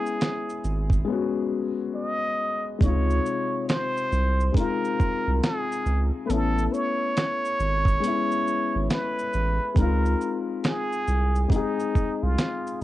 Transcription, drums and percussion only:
0.06 shaker soft
0.21 snare loud
0.21 closed hi-hat medium
0.21 shaker medium
0.49 shaker soft
0.64 shaker medium
0.90 kick medium
0.90 shaker soft
2.81 kick loud
2.81 closed hi-hat medium
2.81 shaker medium
3.10 shaker soft
3.26 shaker medium
3.69 snare loud
3.69 closed hi-hat medium
3.69 shaker medium
3.97 shaker soft
4.12 shaker soft
4.40 shaker soft
4.54 kick medium
4.54 closed hi-hat medium
4.54 shaker medium
4.85 shaker soft
5.00 kick medium
5.00 shaker soft
5.43 snare loud
5.43 closed hi-hat medium
5.43 shaker medium
5.72 shaker soft
5.86 shaker soft
6.30 closed hi-hat medium
6.30 shaker medium
6.58 shaker soft
6.74 shaker medium
7.17 snare loud
7.17 closed hi-hat medium
7.17 shaker medium
7.45 shaker soft
7.60 shaker soft
7.85 kick medium
7.85 shaker soft
8.04 closed hi-hat medium
8.04 shaker medium
8.31 shaker soft
8.47 shaker soft
8.90 snare loud
8.90 closed hi-hat medium
8.90 shaker medium
9.19 shaker soft
9.33 shaker soft
9.76 kick loud
9.76 closed hi-hat medium
9.76 shaker medium
10.06 shaker soft
10.21 shaker medium
10.64 snare loud
10.64 closed hi-hat medium
10.64 shaker medium
10.93 shaker soft
11.08 shaker soft
11.36 shaker soft
11.50 kick medium
11.50 closed hi-hat medium
11.50 shaker medium
11.80 shaker soft
11.95 kick medium
11.95 shaker soft
12.38 snare loud
12.38 closed hi-hat medium
12.38 shaker medium
12.67 shaker soft

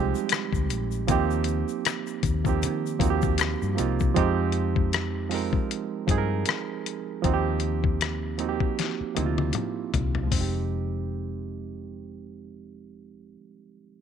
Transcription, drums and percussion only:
0.15 shaker soft
0.29 finger snap medium
0.29 cross-stick loud
0.29 closed hi-hat medium
0.29 shaker medium
0.53 kick medium
0.53 shaker soft
0.70 closed hi-hat medium
0.70 shaker soft
0.91 shaker soft
1.08 kick loud
1.08 closed hi-hat medium
1.08 shaker medium
1.31 shaker soft
1.44 closed hi-hat medium
1.44 shaker soft
1.68 shaker soft
1.85 finger snap medium
1.85 cross-stick loud
1.85 closed hi-hat medium
1.85 shaker medium
2.07 shaker soft
2.23 kick loud
2.23 closed hi-hat medium
2.23 shaker medium
2.45 kick medium
2.45 shaker soft
2.62 closed hi-hat medium
2.62 shaker medium
2.86 shaker soft
3.00 kick medium
3.00 closed hi-hat medium
3.00 shaker soft
3.22 kick medium
3.22 shaker soft
3.38 finger snap medium
3.38 cross-stick loud
3.38 closed hi-hat medium
3.38 shaker medium
3.62 shaker soft
3.78 closed hi-hat medium
3.78 shaker medium
4.00 kick medium
4.00 shaker soft
4.16 kick loud
4.16 closed hi-hat medium
4.52 closed hi-hat soft
4.76 kick medium
4.93 cross-stick medium
4.93 closed hi-hat medium
5.31 open hi-hat soft
5.53 kick medium
5.71 closed hi-hat medium
6.08 kick medium
6.08 closed hi-hat medium
6.46 cross-stick medium
6.46 closed hi-hat medium
6.86 closed hi-hat medium
7.24 kick medium
7.24 closed hi-hat medium
7.60 closed hi-hat medium
7.84 kick medium
8.01 cross-stick medium
8.01 closed hi-hat medium
8.39 closed hi-hat medium
8.60 kick medium
8.79 snare soft
8.79 closed hi-hat medium
9.16 closed hi-hat medium
9.16 high tom medium
9.38 high tom medium
9.53 closed hi-hat medium
9.53 mid tom medium
9.94 closed hi-hat medium
9.94 floor tom medium
10.15 floor tom medium
10.32 kick medium
10.32 open hi-hat medium

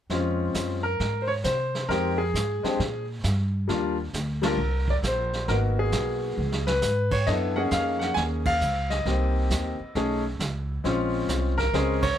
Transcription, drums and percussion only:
0.10 brush sweep soft
0.10 snare soft
0.54 snare medium
0.54 hi-hat pedal medium
1.00 brush sweep soft
1.00 snare soft
1.44 snare medium
1.44 hi-hat pedal soft
1.75 snare soft
1.90 brush sweep soft
1.90 snare soft
2.35 snare medium
2.35 hi-hat pedal medium
2.64 snare soft
2.80 brush sweep soft
2.80 snare soft
3.24 snare medium
3.24 hi-hat pedal medium
3.69 brush sweep soft
3.69 snare soft
4.14 snare medium
4.14 hi-hat pedal medium
4.43 snare medium
4.43 ride medium
4.58 brush sweep soft
4.88 kick soft
5.03 snare medium
5.03 hi-hat pedal medium
5.33 snare soft
5.48 brush sweep soft
5.48 snare soft
5.92 snare medium
5.92 hi-hat pedal soft
6.52 snare soft
6.67 snare medium
6.82 snare medium
6.82 hi-hat pedal medium
7.11 kick medium
7.11 crash medium
7.27 brush sweep soft
7.27 snare soft
7.71 snare medium
7.71 hi-hat pedal soft
8.01 snare soft
8.16 brush sweep soft
8.16 snare soft
8.45 kick medium
8.45 ride medium
8.61 hi-hat pedal soft
8.90 snare soft
9.06 brush sweep soft
9.06 snare soft
9.50 snare medium
9.50 hi-hat pedal medium
9.95 brush sweep soft
9.95 snare soft
10.40 snare medium
10.40 hi-hat pedal soft
10.85 brush sweep soft
10.85 snare soft
11.29 snare medium
11.29 hi-hat pedal medium
11.58 kick soft
11.58 snare soft
11.74 brush sweep soft
11.74 snare soft
12.02 kick medium
12.02 ride medium

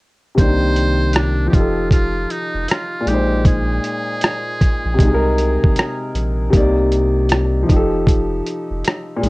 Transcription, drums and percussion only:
0.38 kick medium
0.38 closed hi-hat medium
0.76 closed hi-hat medium
1.13 cross-stick loud
1.13 closed hi-hat medium
1.53 kick medium
1.53 closed hi-hat medium
1.91 kick medium
1.91 closed hi-hat medium
2.31 closed hi-hat medium
2.68 cross-stick loud
2.68 closed hi-hat medium
3.07 closed hi-hat medium
3.45 kick loud
3.45 closed hi-hat medium
3.84 closed hi-hat medium
4.21 cross-stick loud
4.21 closed hi-hat medium
4.61 kick medium
4.61 closed hi-hat medium
4.99 kick medium
4.99 closed hi-hat medium
5.38 closed hi-hat medium
5.64 kick medium
5.76 cross-stick loud
5.76 closed hi-hat medium
6.15 closed hi-hat medium
6.53 kick loud
6.53 closed hi-hat medium
6.92 closed hi-hat medium
7.29 cross-stick loud
7.29 closed hi-hat medium
7.69 kick medium
7.69 closed hi-hat medium
8.07 kick medium
8.07 closed hi-hat medium
8.46 closed hi-hat medium
8.84 cross-stick loud
8.84 closed hi-hat medium
9.23 closed hi-hat medium

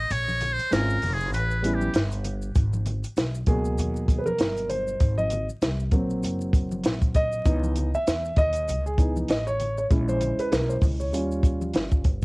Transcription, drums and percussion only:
0.10 closed hi-hat medium
0.10 maracas medium
0.28 high conga medium
0.28 maracas soft
0.41 closed hi-hat medium
0.41 low conga medium
0.41 maracas soft
0.59 closed hi-hat medium
0.59 maracas soft
0.72 snare loud
0.72 closed hi-hat loud
0.72 maracas medium
0.90 maracas soft
1.02 open hi-hat medium
1.02 low conga medium
1.02 maracas medium
1.20 maracas medium
1.33 closed hi-hat medium
1.33 maracas medium
1.51 maracas soft
1.64 closed hi-hat medium
1.64 maracas soft
1.81 high conga medium
1.81 maracas soft
1.94 snare loud
1.94 closed hi-hat medium
1.94 maracas medium
2.12 closed hi-hat soft
2.12 maracas soft
2.24 closed hi-hat medium
2.24 low conga medium
2.24 maracas soft
2.42 maracas soft
2.55 kick loud
2.55 closed hi-hat medium
2.55 maracas medium
2.73 high conga medium
2.73 maracas soft
2.86 closed hi-hat medium
2.86 low conga medium
2.86 maracas soft
3.04 closed hi-hat medium
3.04 maracas soft
3.17 snare loud
3.17 closed hi-hat loud
3.17 maracas medium
3.35 maracas soft
3.46 kick loud
3.46 closed hi-hat medium
3.46 low conga medium
3.46 maracas soft
3.65 maracas medium
3.78 closed hi-hat medium
3.78 maracas medium
3.96 maracas soft
4.08 kick medium
4.08 closed hi-hat medium
4.08 maracas soft
4.26 high conga medium
4.26 maracas medium
4.38 snare loud
4.38 closed hi-hat medium
4.38 maracas medium
4.57 closed hi-hat soft
4.57 maracas soft
4.69 closed hi-hat medium
4.69 low conga medium
4.69 maracas soft
4.87 maracas soft
5.00 kick loud
5.00 closed hi-hat medium
5.00 maracas medium
5.18 high conga medium
5.18 maracas soft
5.30 closed hi-hat medium
5.30 low conga medium
5.30 maracas soft
5.49 maracas medium
5.62 snare loud
5.62 closed hi-hat loud
5.62 maracas medium
5.80 maracas soft
5.91 kick loud
5.91 closed hi-hat medium
5.91 low conga medium
5.91 maracas soft
6.10 maracas medium
6.23 closed hi-hat loud
6.23 maracas medium
6.41 maracas soft
6.53 kick loud
6.53 closed hi-hat medium
6.53 maracas soft
6.71 high conga medium
6.71 maracas soft
6.84 snare loud
6.84 closed hi-hat medium
6.84 maracas medium
7.02 kick medium
7.02 closed hi-hat soft
7.02 maracas soft
7.15 kick medium
7.15 closed hi-hat medium
7.15 low conga medium
7.15 maracas soft
7.32 maracas soft
7.46 kick loud
7.46 closed hi-hat medium
7.46 maracas medium
7.64 high conga medium
7.64 maracas soft
7.76 closed hi-hat medium
7.76 low conga medium
7.76 maracas soft
7.94 maracas medium
8.07 snare loud
8.07 closed hi-hat loud
8.07 maracas medium
8.25 maracas soft
8.36 kick loud
8.36 closed hi-hat medium
8.36 low conga medium
8.36 maracas medium
8.53 closed hi-hat medium
8.53 maracas medium
8.68 closed hi-hat medium
8.68 maracas medium
8.87 maracas soft
8.98 kick loud
8.98 closed hi-hat medium
8.98 maracas soft
9.16 high conga medium
9.16 maracas soft
9.28 snare loud
9.28 closed hi-hat medium
9.28 maracas medium
9.47 maracas soft
9.60 closed hi-hat medium
9.60 low conga medium
9.60 maracas soft
9.78 maracas soft
9.91 kick loud
9.91 closed hi-hat medium
9.91 maracas medium
10.09 high conga medium
10.09 maracas soft
10.21 closed hi-hat medium
10.21 low conga medium
10.21 maracas medium
10.39 closed hi-hat medium
10.39 maracas soft
10.53 snare loud
10.53 closed hi-hat loud
10.53 maracas medium
10.70 maracas soft
10.81 kick loud
10.81 open hi-hat medium
10.81 low conga medium
10.81 maracas soft
11.00 maracas medium
11.13 closed hi-hat medium
11.13 maracas medium
11.31 maracas soft
11.43 kick loud
11.43 closed hi-hat medium
11.43 maracas soft
11.61 high conga medium
11.61 maracas soft
11.73 snare loud
11.73 closed hi-hat medium
11.73 maracas medium
11.91 kick medium
11.91 maracas soft
12.04 kick medium
12.04 closed hi-hat medium
12.04 low conga medium
12.04 maracas soft

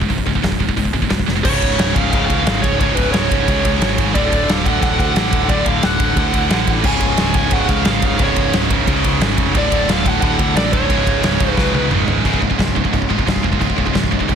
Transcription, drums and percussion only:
0.01 kick medium
0.10 kick medium
0.10 open hi-hat soft
0.18 kick medium
0.27 kick medium
0.35 kick medium
0.44 kick medium
0.44 snare loud
0.44 open hi-hat soft
0.52 kick medium
0.60 kick medium
0.69 kick medium
0.77 kick medium
0.77 open hi-hat medium
0.85 kick medium
0.94 kick medium
1.02 kick medium
1.10 kick medium
1.10 snare loud
1.10 open hi-hat soft
1.19 kick medium
1.28 snare medium
1.45 kick loud
1.45 crash loud
1.62 kick medium
1.62 ride medium
1.79 snare loud
1.79 ride medium
1.96 kick medium
1.96 ride medium
2.13 kick loud
2.13 ride loud
2.30 kick medium
2.30 ride medium
2.47 snare loud
2.47 ride loud
2.64 kick medium
2.64 ride medium
2.80 kick loud
2.80 ride loud
2.97 kick medium
2.97 ride medium
3.14 snare loud
3.14 ride loud
3.31 kick medium
3.31 ride medium
3.48 kick loud
3.48 ride loud
3.65 kick medium
3.65 ride medium
3.82 snare loud
3.82 ride loud
3.98 kick medium
3.98 ride medium
4.15 kick loud
4.15 ride loud
4.32 kick medium
4.32 ride medium
4.49 snare loud
4.49 ride loud
4.66 kick medium
4.66 ride medium
4.82 kick loud
4.82 ride loud
4.99 kick medium
4.99 ride medium
5.16 snare loud
5.16 ride loud
5.33 kick medium
5.33 ride medium
5.49 kick loud
5.49 ride loud
5.66 kick medium
5.66 ride medium
5.83 snare loud
5.83 ride loud
6.00 kick medium
6.00 ride medium
6.17 kick loud
6.17 ride loud
6.34 kick medium
6.34 ride medium
6.50 snare loud
6.50 ride loud
6.67 kick medium
6.67 ride medium
6.84 kick loud
6.84 crash loud
7.00 kick medium
7.00 ride medium
7.17 snare loud
7.17 ride loud
7.34 kick medium
7.34 ride medium
7.51 kick loud
7.51 ride loud
7.69 kick medium
7.69 ride medium
7.85 snare loud
7.85 ride loud
8.02 kick medium
8.02 ride medium
8.19 kick loud
8.19 ride loud
8.36 kick medium
8.36 ride medium
8.53 snare loud
8.53 ride loud
8.70 kick medium
8.70 ride medium
8.87 kick loud
8.87 ride loud
9.04 kick medium
9.04 ride medium
9.21 snare loud
9.21 ride loud
9.38 kick loud
9.38 ride medium
9.55 kick loud
9.55 ride loud
9.72 kick medium
9.72 ride medium
9.89 snare loud
9.89 ride loud
10.06 kick medium
10.06 ride medium
10.22 kick loud
10.22 ride loud
10.39 kick medium
10.39 ride medium
10.57 snare loud
10.57 ride loud
10.73 kick medium
10.73 ride medium
10.90 kick loud
10.90 ride loud
11.07 kick medium
11.07 ride medium
11.23 snare loud
11.23 ride loud
11.40 kick medium
11.40 ride medium
11.57 kick loud
11.57 snare medium
11.75 high tom medium
11.91 mid tom loud
12.08 floor tom loud
12.25 kick medium
12.25 china medium
12.34 kick medium
12.42 kick medium
12.51 kick medium
12.59 kick medium
12.59 snare loud
12.59 china medium
12.68 kick medium
12.76 kick medium
12.85 kick medium
12.93 kick medium
12.93 china medium
13.02 kick medium
13.10 kick medium
13.19 kick medium
13.27 kick medium
13.27 snare loud
13.27 china medium
13.36 kick medium
13.44 kick medium
13.53 kick medium
13.61 kick medium
13.61 china medium
13.70 kick medium
13.78 kick medium
13.87 kick medium
13.95 kick medium
13.95 snare loud
13.95 china medium
14.04 kick medium
14.12 kick medium
14.21 kick medium
14.29 kick medium
14.29 china medium

